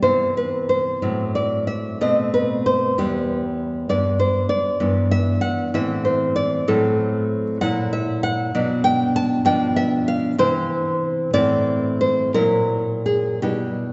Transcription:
0.02 C3 E3 B3 C5
0.37 B4
0.69 C5
1.02 A2 F#3 C4
1.35 D5
1.67 E5
2.01 B2 A3 C4 D#5
2.34 B4
2.66 C5
2.98 E2 G3 B3 G4
3.89 G2 G3 B3 D5
4.20 C5
4.49 D5
4.80 G2 E3 B3
5.11 E5
5.41 F#5
5.74 A2 E3 C4 E5
6.05 C5
6.36 D5
6.68 A2 F#3 C4 A4
7.61 A#2 F#3 E4 F#5
7.93 E5
8.23 F#5
8.55 B2 F#3 D4
8.84 G5
9.16 A5
9.45 B2 F3 D4 G5
9.76 E5
10.08 F5
10.38 C3 E3 C4 C5
11.33 A2 E3 C4 D5
12.01 C5
12.34 A#2 F#3 E4 A#4
13.06 G#4
13.42 B2 G3 E4 G4

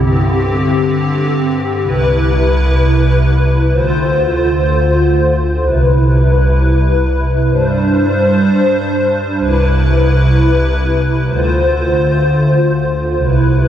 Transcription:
Already playing: G2 D3 C4 G4
1.83 C2 C3 E4 B4
3.72 D2 D3 F4 C5
5.61 C2 C3 E4 B4
7.50 G2 G3 D4 C5
9.39 C2 C3 E4 B4
11.28 D2 D3 F4 C5
13.17 C2 C3 E4 B4

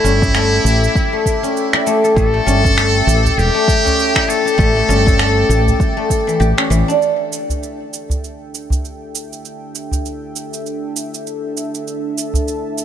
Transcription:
Already playing: A3 E4 A4 E5 G5 D6
0.04 G1 C#4, cabasa
0.22 C#4, kick, udu, cabasa
0.35 A3, finger snap, cabasa
0.65 A1, cabasa
0.84 cabasa
0.95 kick, cabasa
1.13 A3
1.26 kick, cabasa
1.43 C#4, cabasa
1.57 cabasa
1.73 E4, finger snap
1.87 A3, cabasa
2.04 A4, cabasa
2.16 A1 A3 A4, kick, cabasa
2.34 A3
2.46 G1 C#4, cabasa
2.64 C#4, kick, udu, cabasa
2.76 A3, finger snap, cabasa
3.07 A1, cabasa
3.25 udu, cabasa
3.37 E1 G4, cabasa
3.54 A3
3.68 kick, cabasa
3.85 C#4, udu, cabasa
3.99 cabasa
4.15 E4, finger snap, kick
4.28 A3 A4, cabasa
4.45 A4, cabasa
4.58 A1 A3, kick, cabasa
4.76 A3
4.88 G1 C#4, cabasa
5.06 C#4, kick, udu, cabasa
5.18 A3, finger snap, cabasa
5.49 A1, cabasa
5.68 udu, cabasa
5.80 kick, cabasa
5.97 A3
6.10 kick, cabasa
6.27 E3, cabasa
6.40 A1 G4, cabasa
6.58 C#4, finger snap
6.70 A1 E3, cabasa
6.88 D4, cabasa
7.01 D4 A4 E5 G5, cabasa
7.32 cabasa
7.50 udu, cabasa
7.63 cabasa
7.93 cabasa
8.10 udu, cabasa
8.24 cabasa
8.55 cabasa
8.70 udu, cabasa
8.85 cabasa
9.15 cabasa
9.33 cabasa
9.45 cabasa
9.75 cabasa
9.92 udu, cabasa
10.06 cabasa
10.36 cabasa
10.53 cabasa
10.66 cabasa
10.96 cabasa
11.14 cabasa
11.27 cabasa
11.57 cabasa
11.75 cabasa
11.86 A5, cabasa
12.18 cabasa
12.34 udu, cabasa
12.48 cabasa
12.78 cabasa

